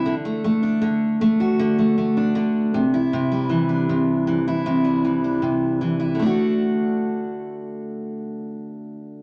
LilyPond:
\new Staff \with { instrumentName = "Steel-string acoustic guitar" } { \clef bass \time 4/4 \key d \mixolydian \tempo 4 = 78 d16 a16 a16 d'16 d8 a16 fis'16 d16 a16 a16 d'16 d8 c16 e'16 | c16 g16 e16 d'16 c8 e16 e'16 c16 g16 e16 d'16 c8 e16 e'16 | <d a d' fis'>1 | }